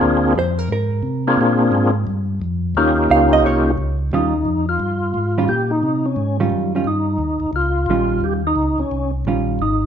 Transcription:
Already playing: tonewheel organ A#3 C4 D4 F4 G#4
0.02 tonewheel organ D2
0.35 tonewheel organ F2, hollow-body jazz guitar C5
0.59 hollow-body jazz guitar A#4
0.68 tonewheel organ G#2
0.72 hollow-body jazz guitar A#4
1.03 tonewheel organ C3
1.27 tonewheel organ A#3 C4 D4 F4 G#4
1.37 tonewheel organ A#2 A#3 C4 D4 F4 G#4
1.72 tonewheel organ G#2
2.07 tonewheel organ G2
2.42 tonewheel organ F2
2.75 tonewheel organ D#2 A#3 C#4 D#4 F4 G4
3.10 tonewheel organ C#2, hollow-body jazz guitar F5
3.33 hollow-body jazz guitar D#5
3.43 tonewheel organ C2, hollow-body jazz guitar C#5
3.78 tonewheel organ C#2
4.12 tonewheel organ D#2 D#4, hollow-body jazz guitar D#3 G3 C#4 F4
4.45 tonewheel organ F2
4.69 tonewheel organ F4
4.80 tonewheel organ G2
5.14 tonewheel organ G#2
5.38 hollow-body jazz guitar D#3 G3 C#4 F4
5.48 tonewheel organ A#2 G4
5.71 tonewheel organ D#4
5.83 tonewheel organ C3
6.06 tonewheel organ C#4
6.16 tonewheel organ G#2
6.40 hollow-body jazz guitar D#3 G3 C#4 F4
6.50 tonewheel organ F#2
6.75 hollow-body jazz guitar D#3 G3 C#4 F4
6.84 tonewheel organ G2 D#4
7.18 tonewheel organ D#2
7.40 tonewheel organ D#2
7.53 tonewheel organ C#2 F4
7.86 tonewheel organ A#1, hollow-body jazz guitar D#3 G3
7.91 hollow-body jazz guitar C#4 F4
8.20 tonewheel organ D#2 G4
8.47 tonewheel organ D#4
8.56 tonewheel organ C#2
8.78 tonewheel organ C#2 C#4
8.91 tonewheel organ C2
9.25 tonewheel organ A#1, hollow-body jazz guitar D#3 G3 C#4 F4
9.59 tonewheel organ G#1 D#4

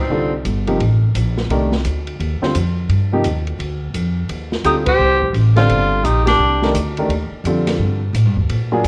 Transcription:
0.00 tenor saxophone C4, alto saxophone D#4
0.10 upright bass C2, grand piano D3 G3 C4 F4 A4
0.45 upright bass G1, hi-hat pedal, ride
0.67 grand piano C3 F3 A#3 D#4 G4, ride
0.80 upright bass A1, ride
1.14 upright bass A#1, hi-hat pedal, ride
1.38 snare
1.50 upright bass C2, grand piano D#3 A3 D4 G4 A#4, ride
1.72 snare
1.85 upright bass D2, hi-hat pedal, ride
2.07 ride
2.20 upright bass D#2, ride
2.42 grand piano D3 G3 C4 F4 C5, muted upright bass stroke, snare
2.55 upright bass F2, hi-hat pedal, ride
2.89 upright bass G2, ride
3.13 grand piano C3 F3 A#3 D#4 G4
3.24 upright bass D#2, hi-hat pedal, ride
3.47 ride
3.59 upright bass D2, ride
3.94 upright bass F2, hi-hat pedal, ride
4.29 upright bass D#2, ride
4.52 snare
4.64 upright bass D2, grand piano D3 G3 C4 F4 A4, tenor saxophone D#4, alto saxophone G4, hi-hat pedal, ride
4.86 tenor saxophone G4, alto saxophone C5, kick, ride
4.99 upright bass C2
5.22 kick
5.33 upright bass A1, hi-hat pedal, ride
5.56 grand piano D3 G3 C4 F4 C5, tenor saxophone F4, alto saxophone A4, snare, ride
5.69 upright bass G1, ride
6.03 upright bass A#1, tenor saxophone D#4, alto saxophone G4, hi-hat pedal, ride
6.25 tenor saxophone D4, alto saxophone G4, snare, ride
6.39 upright bass C2
6.62 grand piano D#3 A3 D4 G4 A#4, snare
6.74 upright bass D2, hi-hat pedal, ride
6.97 grand piano D#3 A3 D4 G4 A#4, ride
7.09 upright bass D#2, ride
7.31 muted upright bass stroke
7.44 upright bass F2, grand piano D3 G3 C4 F4 A4, hi-hat pedal, ride
7.67 snare, ride
7.79 upright bass G2
8.13 upright bass A2, hi-hat pedal, ride
8.25 upright bass G2
8.37 upright bass D#2, kick
8.49 upright bass A#2, ride
8.72 grand piano F#3 A#3 D4 F4 G#4
8.84 upright bass G#2, hi-hat pedal, ride

